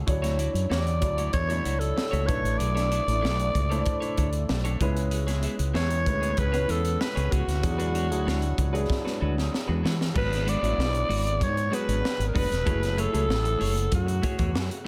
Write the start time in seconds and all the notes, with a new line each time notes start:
0.06 D2 F#3 D4 E4 C#5, muted clean electric guitar stroke, kick, closed hi-hat
0.22 A3 E4 F#4 C#5, snare, closed hi-hat
0.38 A3 E4 F#4 D5, closed hi-hat
0.54 F#2, muted clean electric guitar stroke, closed hi-hat
0.70 E2 A3 E4 F#4 D5, snare
0.86 muted clean electric guitar stroke, closed hi-hat
1.01 D2 F#3 D4 E4 D5, muted clean electric guitar stroke, kick, closed hi-hat
1.18 A3 E4 F#4 C#5, closed hi-hat
1.33 E2 C#5, muted clean electric guitar stroke, kick, closed hi-hat
1.48 F#3 A3 D4 E4 F#4 C#5, closed hi-hat
1.65 C#2 A3 E4 F#4 C#5, closed hi-hat
1.80 A4, muted clean electric guitar stroke, closed hi-hat
1.96 muted clean electric guitar stroke, snare
2.11 C#2 A3 E4 F#4 C#5, closed hi-hat
2.27 B1 A3 D4 E4 A4 B4 C#5, kick, closed hi-hat
2.44 A1, muted clean electric guitar stroke, closed hi-hat
2.59 B1 D5, muted clean electric guitar stroke, closed hi-hat
2.75 D4 E4 A4 C#5, snare, closed hi-hat
2.91 D4 E4 A4 D5, closed hi-hat
3.06 A1 A3 D4 E4 D5, muted clean electric guitar stroke, closed hi-hat
3.21 B1 D4 E4 A4 D5, snare
3.37 muted clean electric guitar stroke, closed hi-hat
3.54 C#2, muted clean electric guitar stroke, kick, closed hi-hat
3.70 A3 D4 E4 A4 C5 C#5, closed hi-hat
3.79 D5
3.86 kick, closed hi-hat
4.00 D4 E4 A4 C#5, closed hi-hat
4.17 D2 D4 E4 A4 C#5, kick, closed hi-hat
4.33 muted clean electric guitar stroke, closed hi-hat
4.49 B1, muted clean electric guitar stroke, snare
4.64 D4 E4 A4 C#5, closed hi-hat
4.80 C#2 G#3 B3 C#4 E4 G#4 B4 C#5, kick, closed hi-hat
4.95 muted clean electric guitar stroke, closed hi-hat
5.11 muted clean electric guitar stroke, closed hi-hat
5.27 B3 E4 G#4 C#5, snare, closed hi-hat
5.42 B3 E4 G#4 E5, closed hi-hat
5.58 C#2, muted clean electric guitar stroke, closed hi-hat
5.74 E2 B3 E4 G#4 C#5 E5, snare
5.89 muted clean electric guitar stroke, closed hi-hat
6.05 D2 G#3 C#4 E4 B4, muted clean electric guitar stroke, kick, closed hi-hat
6.20 B3 E4 G#4 C#5, closed hi-hat
6.37 C#2 B4, muted clean electric guitar stroke, kick, closed hi-hat
6.52 B3 C#4 E4 G#4 B4 C#5, closed hi-hat
6.68 E2 B3 E4 G#4 A4 C#5, closed hi-hat
6.84 muted clean electric guitar stroke, closed hi-hat
7.00 B4, muted clean electric guitar stroke, snare
7.15 C#2 B3 E4 G#4 C#5, closed hi-hat
7.31 C#2 B3 E4 F#4 G#4 C#5, kick, closed hi-hat
7.47 D2, muted clean electric guitar stroke, snare, closed hi-hat
7.62 E2 F#3 D4 E4 G#4, muted clean electric guitar stroke, kick, closed hi-hat
7.78 G#3 D4 F#4 B4, closed hi-hat
7.93 G#3 D4 F#4 C#5, closed hi-hat
8.10 D2 F#3 D4 E4 G#4, closed hi-hat
8.26 D2 G#3 D4 F#4 C#5, snare
8.42 muted clean electric guitar stroke, closed hi-hat
8.58 C#2, muted clean electric guitar stroke, kick, closed hi-hat
8.72 F#3 G#3 D4 E4 F#4 G#4 B4, closed hi-hat
8.90 muted clean electric guitar stroke, kick, snare
9.05 G#3 D4 F#4 B4, snare
9.20 D2 G#3 D4 F#4 B4
9.37 muted clean electric guitar stroke, snare
9.52 muted clean electric guitar stroke, snare
9.68 E2 G#3 D4 F#4 B4
9.83 E3 G#3 D4 F#4 B4, snare
9.99 muted clean electric guitar stroke, snare
10.14 G#1 F#3 G#3 B3 D4 F#4 G#4 B4, kick, crash
10.30 muted clean electric guitar stroke, snare, closed hi-hat
10.46 G#3 D4 F#4 B4 D5, closed hi-hat
10.62 A1 F#3 G#3 B3 D4 E4 F#4 B4, closed hi-hat
10.77 B1, muted clean electric guitar stroke, snare
10.93 muted clean electric guitar stroke, closed hi-hat
11.09 G#1 G#3 D4 F#4 B4, open hi-hat
11.24 muted clean electric guitar stroke, closed hi-hat
11.40 G#2 C#5, muted clean electric guitar stroke, kick, closed hi-hat
11.55 muted clean electric guitar stroke, closed hi-hat
11.71 F#3 G#3 B3 D4 F#4 G#4 B4, closed hi-hat
11.87 G#1 G#3 D4 F#4 B4, closed hi-hat
12.02 muted clean electric guitar stroke, snare
12.18 G#1, muted clean electric guitar stroke, closed hi-hat
12.28 A#4
12.34 F#1 G#3 D4 F#4 B4, kick, open hi-hat
12.38 B4
12.50 E1, muted clean electric guitar stroke, snare, closed hi-hat
12.65 F#1 F#3 A3 E4 G#4 C#5, kick, closed hi-hat
12.81 muted clean electric guitar stroke, snare, closed hi-hat
12.97 A3 E4 G#4 A4 C#5, closed hi-hat
13.12 C#2 F#3 A3 E4 G#4 A4 C#5, closed hi-hat
13.28 A1, muted clean electric guitar stroke, snare
13.44 muted clean electric guitar stroke, closed hi-hat
13.59 F#1 A3 E4 G#4 C#5, open hi-hat
13.75 muted clean electric guitar stroke, closed hi-hat
13.91 F#2 F#4, muted clean electric guitar stroke, kick, closed hi-hat
14.07 muted clean electric guitar stroke, closed hi-hat
14.22 A3 E4 G#4 C#5, kick, closed hi-hat
14.38 E2 A3 E4 G#4 C#5, kick, closed hi-hat
14.54 F#2, muted clean electric guitar stroke, snare
14.69 muted clean electric guitar stroke, closed hi-hat